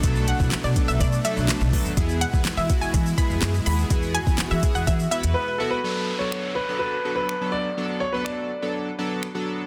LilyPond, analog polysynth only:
\new Staff \with { instrumentName = "Analog polysynth" } { \time 4/4 \key b \dorian \tempo 4 = 124 <fis a b d' a'>8 r16 <fis a b d' e'>8 r16 <fis a b d' a'>8. r16 <fis a b d' a'>8. r16 <fis a b d' a'>8 | <b e' gis'>8 r16 <b e' gis'>8 r16 <b e' fis'>8. r16 <b e' gis'>8. r16 <b e' gis'>8 | <b e' gis'>8 r16 <b e' gis'>8 r16 <b e' gis'>8. r16 <b e' b'>8. r16 <b e' fis'>8 | <fis b d' a'>8 r16 <fis b d' a'>8. r16 <fis b d' a'>8 r16 <fis b d' a'>8 r16 <fis b d' a'>8 r16 |
<fis b d' a'>8 r16 <fis b d' a'>8. r16 <fis b d' a'>8 r16 <fis b d' a'>8 r16 <fis b d' a'>8 r16 | }